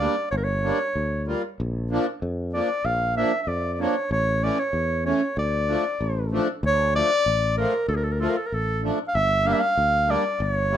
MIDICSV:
0, 0, Header, 1, 4, 480
1, 0, Start_track
1, 0, Key_signature, -1, "minor"
1, 0, Tempo, 630915
1, 231, Time_signature, 2, 2, 24, 8
1, 8194, End_track
2, 0, Start_track
2, 0, Title_t, "Clarinet"
2, 0, Program_c, 0, 71
2, 0, Note_on_c, 0, 74, 89
2, 217, Note_off_c, 0, 74, 0
2, 236, Note_on_c, 0, 73, 80
2, 282, Note_on_c, 0, 70, 68
2, 293, Note_off_c, 0, 73, 0
2, 335, Note_on_c, 0, 73, 94
2, 346, Note_off_c, 0, 70, 0
2, 954, Note_off_c, 0, 73, 0
2, 1929, Note_on_c, 0, 74, 89
2, 2169, Note_on_c, 0, 77, 109
2, 2181, Note_off_c, 0, 74, 0
2, 2407, Note_off_c, 0, 77, 0
2, 2411, Note_on_c, 0, 76, 91
2, 2601, Note_off_c, 0, 76, 0
2, 2601, Note_on_c, 0, 76, 72
2, 2645, Note_on_c, 0, 74, 94
2, 2656, Note_off_c, 0, 76, 0
2, 2839, Note_off_c, 0, 74, 0
2, 2839, Note_on_c, 0, 74, 63
2, 2898, Note_on_c, 0, 73, 93
2, 2909, Note_off_c, 0, 74, 0
2, 3130, Note_off_c, 0, 73, 0
2, 3134, Note_on_c, 0, 73, 97
2, 3373, Note_on_c, 0, 74, 91
2, 3384, Note_off_c, 0, 73, 0
2, 3494, Note_on_c, 0, 73, 88
2, 3506, Note_off_c, 0, 74, 0
2, 3844, Note_off_c, 0, 73, 0
2, 3848, Note_on_c, 0, 73, 77
2, 4071, Note_off_c, 0, 73, 0
2, 4097, Note_on_c, 0, 74, 90
2, 4781, Note_off_c, 0, 74, 0
2, 5070, Note_on_c, 0, 73, 115
2, 5281, Note_off_c, 0, 73, 0
2, 5291, Note_on_c, 0, 74, 117
2, 5736, Note_off_c, 0, 74, 0
2, 5764, Note_on_c, 0, 70, 83
2, 5986, Note_off_c, 0, 70, 0
2, 5999, Note_on_c, 0, 69, 66
2, 6061, Note_on_c, 0, 70, 71
2, 6073, Note_off_c, 0, 69, 0
2, 6111, Note_on_c, 0, 69, 62
2, 6122, Note_off_c, 0, 70, 0
2, 6174, Note_on_c, 0, 70, 59
2, 6185, Note_off_c, 0, 69, 0
2, 6237, Note_on_c, 0, 69, 76
2, 6249, Note_off_c, 0, 70, 0
2, 6304, Note_on_c, 0, 70, 76
2, 6315, Note_off_c, 0, 69, 0
2, 6364, Note_on_c, 0, 69, 66
2, 6375, Note_off_c, 0, 70, 0
2, 6433, Note_on_c, 0, 70, 68
2, 6445, Note_off_c, 0, 69, 0
2, 6495, Note_on_c, 0, 69, 99
2, 6506, Note_off_c, 0, 70, 0
2, 6721, Note_off_c, 0, 69, 0
2, 6908, Note_on_c, 0, 77, 93
2, 6962, Note_on_c, 0, 76, 118
2, 6973, Note_off_c, 0, 77, 0
2, 7205, Note_on_c, 0, 77, 94
2, 7216, Note_off_c, 0, 76, 0
2, 7250, Note_on_c, 0, 76, 85
2, 7261, Note_off_c, 0, 77, 0
2, 7303, Note_on_c, 0, 77, 113
2, 7314, Note_off_c, 0, 76, 0
2, 7689, Note_on_c, 0, 74, 92
2, 7700, Note_off_c, 0, 77, 0
2, 7926, Note_on_c, 0, 73, 95
2, 7937, Note_off_c, 0, 74, 0
2, 8194, Note_off_c, 0, 73, 0
2, 8194, End_track
3, 0, Start_track
3, 0, Title_t, "Accordion"
3, 0, Program_c, 1, 21
3, 0, Note_on_c, 1, 55, 69
3, 0, Note_on_c, 1, 58, 53
3, 3, Note_on_c, 1, 62, 73
3, 112, Note_off_c, 1, 55, 0
3, 112, Note_off_c, 1, 58, 0
3, 117, Note_off_c, 1, 62, 0
3, 478, Note_on_c, 1, 55, 58
3, 484, Note_on_c, 1, 58, 55
3, 488, Note_on_c, 1, 62, 70
3, 596, Note_off_c, 1, 55, 0
3, 600, Note_off_c, 1, 58, 0
3, 601, Note_off_c, 1, 62, 0
3, 961, Note_on_c, 1, 55, 73
3, 967, Note_on_c, 1, 58, 72
3, 974, Note_on_c, 1, 65, 67
3, 1079, Note_off_c, 1, 55, 0
3, 1082, Note_off_c, 1, 58, 0
3, 1086, Note_off_c, 1, 65, 0
3, 1445, Note_on_c, 1, 53, 71
3, 1450, Note_on_c, 1, 58, 69
3, 1460, Note_on_c, 1, 62, 85
3, 1563, Note_off_c, 1, 53, 0
3, 1565, Note_off_c, 1, 58, 0
3, 1570, Note_off_c, 1, 62, 0
3, 1922, Note_on_c, 1, 53, 58
3, 1932, Note_on_c, 1, 58, 51
3, 1936, Note_on_c, 1, 62, 65
3, 2042, Note_off_c, 1, 53, 0
3, 2047, Note_off_c, 1, 58, 0
3, 2049, Note_off_c, 1, 62, 0
3, 2401, Note_on_c, 1, 53, 66
3, 2407, Note_on_c, 1, 58, 57
3, 2410, Note_on_c, 1, 62, 74
3, 2522, Note_off_c, 1, 53, 0
3, 2525, Note_off_c, 1, 58, 0
3, 2527, Note_off_c, 1, 62, 0
3, 2884, Note_on_c, 1, 53, 65
3, 2885, Note_on_c, 1, 58, 56
3, 2894, Note_on_c, 1, 62, 76
3, 3005, Note_off_c, 1, 53, 0
3, 3005, Note_off_c, 1, 58, 0
3, 3009, Note_off_c, 1, 62, 0
3, 3356, Note_on_c, 1, 52, 59
3, 3364, Note_on_c, 1, 57, 57
3, 3368, Note_on_c, 1, 61, 73
3, 3481, Note_off_c, 1, 52, 0
3, 3485, Note_off_c, 1, 57, 0
3, 3487, Note_off_c, 1, 61, 0
3, 3833, Note_on_c, 1, 52, 60
3, 3843, Note_on_c, 1, 57, 62
3, 3851, Note_on_c, 1, 61, 70
3, 3960, Note_off_c, 1, 52, 0
3, 3965, Note_off_c, 1, 57, 0
3, 3969, Note_off_c, 1, 61, 0
3, 4321, Note_on_c, 1, 53, 56
3, 4325, Note_on_c, 1, 57, 58
3, 4328, Note_on_c, 1, 62, 72
3, 4444, Note_off_c, 1, 53, 0
3, 4446, Note_off_c, 1, 57, 0
3, 4447, Note_off_c, 1, 62, 0
3, 4802, Note_on_c, 1, 53, 63
3, 4804, Note_on_c, 1, 57, 59
3, 4816, Note_on_c, 1, 62, 83
3, 4924, Note_off_c, 1, 53, 0
3, 4925, Note_off_c, 1, 57, 0
3, 4931, Note_off_c, 1, 62, 0
3, 5280, Note_on_c, 1, 53, 58
3, 5285, Note_on_c, 1, 57, 63
3, 5290, Note_on_c, 1, 62, 69
3, 5402, Note_off_c, 1, 53, 0
3, 5405, Note_off_c, 1, 57, 0
3, 5407, Note_off_c, 1, 62, 0
3, 5759, Note_on_c, 1, 53, 64
3, 5764, Note_on_c, 1, 57, 60
3, 5774, Note_on_c, 1, 65, 71
3, 5881, Note_off_c, 1, 53, 0
3, 5883, Note_off_c, 1, 57, 0
3, 5888, Note_off_c, 1, 65, 0
3, 6230, Note_on_c, 1, 53, 62
3, 6235, Note_on_c, 1, 57, 63
3, 6246, Note_on_c, 1, 65, 69
3, 6355, Note_off_c, 1, 53, 0
3, 6358, Note_off_c, 1, 57, 0
3, 6363, Note_off_c, 1, 65, 0
3, 6708, Note_on_c, 1, 53, 64
3, 6716, Note_on_c, 1, 57, 60
3, 6720, Note_on_c, 1, 62, 64
3, 6832, Note_off_c, 1, 53, 0
3, 6837, Note_off_c, 1, 57, 0
3, 6838, Note_off_c, 1, 62, 0
3, 7181, Note_on_c, 1, 55, 64
3, 7187, Note_on_c, 1, 58, 64
3, 7193, Note_on_c, 1, 62, 79
3, 7307, Note_off_c, 1, 55, 0
3, 7310, Note_off_c, 1, 58, 0
3, 7313, Note_off_c, 1, 62, 0
3, 7661, Note_on_c, 1, 55, 58
3, 7665, Note_on_c, 1, 58, 63
3, 7669, Note_on_c, 1, 62, 71
3, 7785, Note_off_c, 1, 55, 0
3, 7787, Note_off_c, 1, 58, 0
3, 7789, Note_off_c, 1, 62, 0
3, 8144, Note_on_c, 1, 55, 63
3, 8149, Note_on_c, 1, 58, 55
3, 8157, Note_on_c, 1, 64, 67
3, 8194, Note_off_c, 1, 55, 0
3, 8194, Note_off_c, 1, 58, 0
3, 8194, Note_off_c, 1, 64, 0
3, 8194, End_track
4, 0, Start_track
4, 0, Title_t, "Fretless electric bass"
4, 0, Program_c, 2, 35
4, 247, Note_on_c, 2, 31, 98
4, 532, Note_off_c, 2, 31, 0
4, 726, Note_on_c, 2, 38, 74
4, 1013, Note_off_c, 2, 38, 0
4, 1216, Note_on_c, 2, 34, 94
4, 1500, Note_off_c, 2, 34, 0
4, 1690, Note_on_c, 2, 41, 81
4, 1976, Note_off_c, 2, 41, 0
4, 2165, Note_on_c, 2, 34, 100
4, 2453, Note_off_c, 2, 34, 0
4, 2640, Note_on_c, 2, 41, 76
4, 2930, Note_off_c, 2, 41, 0
4, 3125, Note_on_c, 2, 33, 106
4, 3413, Note_off_c, 2, 33, 0
4, 3598, Note_on_c, 2, 40, 81
4, 3889, Note_off_c, 2, 40, 0
4, 4085, Note_on_c, 2, 38, 88
4, 4373, Note_off_c, 2, 38, 0
4, 4569, Note_on_c, 2, 33, 82
4, 4856, Note_off_c, 2, 33, 0
4, 5044, Note_on_c, 2, 38, 108
4, 5332, Note_off_c, 2, 38, 0
4, 5524, Note_on_c, 2, 33, 79
4, 5811, Note_off_c, 2, 33, 0
4, 5998, Note_on_c, 2, 38, 108
4, 6286, Note_off_c, 2, 38, 0
4, 6485, Note_on_c, 2, 33, 66
4, 6770, Note_off_c, 2, 33, 0
4, 6962, Note_on_c, 2, 31, 106
4, 7247, Note_off_c, 2, 31, 0
4, 7437, Note_on_c, 2, 38, 84
4, 7721, Note_off_c, 2, 38, 0
4, 7913, Note_on_c, 2, 31, 100
4, 8194, Note_off_c, 2, 31, 0
4, 8194, End_track
0, 0, End_of_file